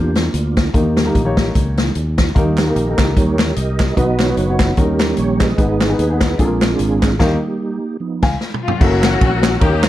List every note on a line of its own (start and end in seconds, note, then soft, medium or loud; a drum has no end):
0.00 0.28 E2 medium
0.00 0.15 A#3 medium
0.00 0.24 A#3 medium
0.00 0.15 D4 medium
0.00 0.24 D4 medium
0.00 0.13 F4 medium
0.00 0.24 F4 medium
0.00 0.17 G4 medium
0.00 0.25 C5 medium
0.15 0.70 A#3 medium
0.15 0.70 D4 medium
0.15 0.58 F4 medium
0.15 snare loud
0.15 closed hi-hat medium
0.34 0.68 D2 medium
0.34 closed hi-hat medium
0.57 0.65 E4 medium
0.57 kick medium
0.57 snare loud
0.57 closed hi-hat medium
0.74 1.09 D#2 medium
0.74 1.33 D#3 medium
0.74 0.98 A#3 medium
0.74 0.97 A#3 medium
0.74 0.99 D#4 medium
0.74 0.98 D#4 medium
0.74 0.99 G4 medium
0.74 1.51 G4 medium
0.74 0.99 A#4 medium
0.74 kick loud
0.74 closed hi-hat medium
0.97 1.22 G3 medium
0.97 1.23 A#3 soft
0.97 1.23 D#4 medium
0.97 snare medium
0.97 closed hi-hat medium
1.05 1.20 A#3 medium
1.05 1.20 D#4 medium
1.05 1.20 G4 medium
1.05 1.20 A#4 medium
1.15 1.49 A#1 medium
1.15 kick medium
1.15 closed hi-hat medium
1.25 1.85 A#3 medium
1.25 1.85 D#4 medium
1.25 1.86 G4 medium
1.25 1.86 C#5 medium
1.37 kick medium
1.37 snare loud
1.37 closed hi-hat medium
1.55 1.90 C#2 medium
1.55 kick loud
1.55 closed hi-hat medium
1.77 1.94 G3 soft
1.77 1.94 A#3 soft
1.77 1.94 D#4 soft
1.77 snare loud
1.77 closed hi-hat medium
1.95 2.30 D#2 medium
1.95 closed hi-hat medium
2.18 kick medium
2.18 snare loud
2.18 closed hi-hat medium
2.35 2.70 D#2 medium
2.35 2.94 D#3 medium
2.35 2.64 G3 medium
2.35 2.60 A#3 medium
2.35 2.64 A#3 soft
2.35 2.60 D#4 medium
2.35 2.58 D#4 medium
2.35 2.60 G4 medium
2.35 2.60 A#4 medium
2.35 kick loud
2.35 closed hi-hat medium
2.57 3.15 D#4 medium
2.57 3.15 G4 medium
2.57 3.15 A#4 medium
2.57 snare medium
2.57 clap medium
2.57 closed hi-hat medium
2.67 2.81 A#3 medium
2.67 2.82 D#4 medium
2.67 2.82 G4 medium
2.67 2.82 A#4 medium
2.76 2.95 A#1 medium
2.76 closed hi-hat medium
2.87 3.47 A#3 medium
2.87 3.47 D#4 medium
2.87 3.47 G4 medium
2.87 2.93 A4 medium
2.93 3.50 A#4 medium
2.98 3.14 C#2 medium
2.98 kick medium
2.98 snare loud
2.98 clap medium
2.98 closed hi-hat medium
3.16 3.51 D#2 medium
3.16 3.36 G3 soft
3.16 3.36 A#3 soft
3.16 3.36 D#4 medium
3.16 3.56 G4 medium
3.16 3.56 A#4 medium
3.16 3.54 C#5 loud
3.16 kick loud
3.16 closed hi-hat medium
3.38 snare loud
3.38 clap medium
3.38 closed hi-hat medium
3.56 3.91 C2 medium
3.56 3.94 G4 medium
3.56 3.94 A#4 medium
3.56 3.95 D#5 medium
3.56 closed hi-hat medium
3.79 kick medium
3.79 snare loud
3.79 clap medium
3.79 closed hi-hat medium
3.96 4.31 B1 medium
3.96 4.56 B2 medium
3.96 4.73 F#3 medium
3.96 4.21 B3 medium
3.96 4.74 B3 soft
3.96 4.74 D#4 medium
3.96 4.22 D#4 medium
3.96 4.19 F#4 medium
3.96 4.22 F#4 medium
3.96 4.57 B4 medium
3.96 4.22 B4 medium
3.96 4.18 D#5 loud
3.96 kick loud
3.96 closed hi-hat medium
4.19 4.74 F#4 medium
4.19 4.61 C#5 medium
4.19 snare loud
4.19 clap medium
4.19 closed hi-hat medium
4.28 4.42 B3 medium
4.28 4.42 D#4 medium
4.28 4.43 F#4 medium
4.28 4.43 B4 medium
4.37 4.71 F#1 medium
4.37 closed hi-hat medium
4.48 4.77 B3 medium
4.48 4.76 D#4 medium
4.48 4.78 F#4 medium
4.48 4.78 C#5 medium
4.59 4.76 B4 medium
4.59 kick medium
4.59 snare loud
4.59 clap medium
4.59 closed hi-hat medium
4.77 5.12 D#2 medium
4.77 5.37 D#3 medium
4.77 5.54 G3 medium
4.77 5.54 A#3 soft
4.77 5.44 C#4 medium
4.77 5.55 C#4 medium
4.77 5.44 D#4 medium
4.77 5.54 G4 medium
4.77 5.44 G4 medium
4.77 5.15 A#4 loud
4.77 5.44 A#4 medium
4.77 kick medium
4.77 closed hi-hat medium
4.99 snare loud
4.99 clap medium
4.99 closed hi-hat medium
5.17 5.52 A#1 medium
5.17 5.39 C#5 medium
5.17 closed hi-hat medium
5.40 5.80 G#4 medium
5.40 5.80 B4 medium
5.40 5.78 D#5 medium
5.40 kick medium
5.40 snare loud
5.40 clap medium
5.40 closed hi-hat medium
5.58 5.93 G#1 medium
5.58 6.17 G#2 medium
5.58 5.86 G#3 medium
5.58 5.82 B3 medium
5.58 5.87 B3 soft
5.58 5.82 D#4 medium
5.58 5.80 D#4 medium
5.58 5.83 G#4 medium
5.58 5.83 B4 medium
5.58 kick loud
5.58 closed hi-hat medium
5.81 6.35 D#4 medium
5.81 6.35 G#4 medium
5.81 6.21 B4 loud
5.81 snare medium
5.81 clap medium
5.81 closed hi-hat medium
5.89 6.04 B3 medium
5.89 6.04 D#4 medium
5.89 6.04 G#4 medium
5.89 6.04 B4 medium
5.99 6.33 D#2 loud
5.99 closed hi-hat medium
6.10 6.39 B3 medium
6.10 6.39 D#4 medium
6.10 6.38 G#4 medium
6.10 6.40 B4 medium
6.21 6.40 B4 medium
6.21 kick medium
6.21 snare loud
6.21 clap medium
6.21 closed hi-hat medium
6.38 6.74 A#1 medium
6.38 6.98 A#2 medium
6.38 7.16 G#3 medium
6.38 7.16 C4 medium
6.38 7.05 D4 medium
6.38 7.16 D4 medium
6.38 7.05 F4 medium
6.38 7.16 F4 medium
6.38 7.06 G#4 medium
6.38 7.23 G#4 medium
6.38 6.45 A4 medium
6.38 kick loud
6.38 closed hi-hat medium
6.45 7.08 A#4 medium
6.61 snare loud
6.61 clap medium
6.61 closed hi-hat medium
6.79 7.20 G#1 medium
6.79 closed hi-hat medium
7.02 kick medium
7.02 snare loud
7.02 clap medium
7.02 closed hi-hat medium
7.19 7.35 D#2 loud
7.19 7.35 D#3 loud
7.19 7.79 G3 medium
7.19 7.35 A#3 loud
7.19 7.97 A#3 medium
7.19 7.35 D#4 loud
7.19 7.97 D#4 medium
7.19 7.35 G4 loud
7.19 7.97 G4 medium
7.19 7.36 A#4 loud
7.19 kick loud
7.19 snare loud
7.19 crash medium
8.00 8.28 F3 medium
8.00 8.29 B3 soft
8.00 8.29 D#4 medium
8.23 8.35 C#2 medium
8.23 8.35 F5 medium
8.23 8.35 G#5 medium
8.23 kick medium
8.23 snare medium
8.23 crash medium
8.41 snare medium
8.54 mid tom medium
8.63 8.80 F4 medium
8.68 floor tom medium
8.80 9.15 F#1 loud
8.80 9.42 A#3 medium
8.80 9.58 A#3 medium
8.80 9.43 C#4 medium
8.80 9.58 C#4 medium
8.80 9.43 E4 medium
8.80 9.61 F#4 loud
8.80 9.43 F#4 medium
8.80 8.87 A4 medium
8.80 9.89 C#5 medium
8.80 9.61 F#5 medium
8.80 9.89 A#5 medium
8.80 9.61 E6 medium
8.80 kick loud
8.80 crash loud
8.87 9.46 A#4 medium
9.03 snare loud
9.03 clap medium
9.03 ride medium
9.21 9.55 A#1 loud
9.21 kick medium
9.21 ride medium
9.43 snare loud
9.43 clap loud
9.43 ride medium
9.60 9.89 D#2 medium
9.60 9.89 D#3 medium
9.60 9.89 A#3 medium
9.60 9.89 C#4 medium
9.60 9.89 D#4 medium
9.60 9.89 G4 medium
9.60 9.84 G4 medium
9.60 9.89 A#4 medium
9.60 9.89 G5 medium
9.60 9.89 D#6 medium
9.60 kick loud
9.60 ride medium
9.83 9.89 A#4 loud
9.83 snare loud
9.83 clap medium
9.83 ride medium